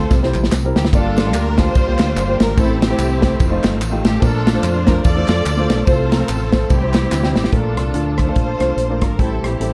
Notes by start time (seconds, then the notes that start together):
Already playing: A3 C4 F4 A4 C5
0.10 C2 C3, kick, snare, tambourine
0.23 G3 C4 E4 C5, snare
0.34 A#1, clap, tambourine
0.44 snare
0.51 C2, snare, clap, tambourine
0.65 G3 C4 E4 A#4
0.76 D2 G4, snare, tambourine
0.85 snare
0.92 G1 G2 D3 G3 A#3 D4 F4 G4 A4 D5, kick, ride bell, tambourine
1.17 snare, ride bell, tambourine
1.25 A#3 F4 G4 F5
1.33 D2 A#4, clap, ride bell, tambourine
1.57 A#3 F4 G4 A4 C5, kick, snare, ride bell, tambourine
1.75 C2, kick, ride bell, tambourine
1.87 A#3 F4 G4 C5
1.98 D2, snare, clap, ride bell, tambourine
2.16 G1, clap, ride bell, tambourine
2.27 A#3 F4 G4 C5
2.40 G#1 A#4, snare, ride bell, tambourine
2.56 A1 A2 E3 A3 C4 E4 G4 A4 C5, kick, ride bell, tambourine
2.82 C4 E4 G4, snare, ride bell, tambourine
2.89 A3 E4 G4 C5
2.98 C2, clap, ride bell, tambourine
3.21 A3 E4 G4 C5, kick, snare, ride bell, tambourine
3.40 F1 D#3 F4, kick, ride bell, tambourine
3.50 A3 D#4 F4 C5
3.63 G1, snare, clap, ride bell, tambourine
3.81 A1, clap, ride bell, tambourine
3.91 A3 D#4 F4 G4
4.05 A1 G4, snare, ride bell, tambourine
4.21 A#1 A#2 F3 A3 A#3 D4 F4 A4 A#4, kick, ride bell, tambourine
4.47 snare, ride bell, tambourine
4.53 A3 D4 F4 C5
4.63 F2 C5, clap, ride bell, tambourine
4.86 A3 D4 F4 A#4 C5, kick, snare, ride bell, tambourine
5.04 E2 F4 A4 D5, kick, ride bell, tambourine
5.15 A3 D4 F4 C5
5.28 F2, snare, clap, ride bell, tambourine
5.45 D2, clap, ride bell, tambourine
5.57 A3 D4 F4 C5
5.70 B1, snare, ride bell, tambourine
5.85 C2 C3 F3 A3 C4 F4 A4 C5, kick, ride bell, tambourine
6.11 A#4, snare, ride bell, tambourine
6.18 A3 C4 F4 C5
6.29 A1 C4 F4 A4, clap, ride bell, tambourine
6.52 A3 C4 F4 C5, kick, snare, ride bell, tambourine
6.69 C2 C3 E3 G3 C4 E4 G4, kick, ride bell, tambourine
6.81 G3 C4 E4 C5
6.93 snare, clap, ride bell, tambourine
7.11 D2, snare, clap, tambourine
7.23 G3 C4 E4 G4, snare
7.35 A1 G4, snare, tambourine
7.44 snare
7.52 A#1 A#2 F3 A3 A#3 D4 F4 A4 A#4, kick, closed hi-hat
7.77 C2, cross-stick, closed hi-hat
7.94 D2 A3 D4 F4 A4, closed hi-hat
8.18 F4 A4 C5, kick, cross-stick, closed hi-hat
8.27 A3 D4 F4 A4
8.35 A#1, kick, closed hi-hat
8.59 C2 A3 D4 F4 C5, cross-stick, closed hi-hat
8.77 A#1, closed hi-hat
8.89 A3 D4 F4 A#4
9.01 G#1 A#4, kick, cross-stick, closed hi-hat
9.18 A1 A2 E3 G3 A3 C4 E4 G4 A4, kick, closed hi-hat
9.43 A#1 C4 E4 G4, cross-stick, closed hi-hat
9.60 A1 G3 C4 E4 A4, closed hi-hat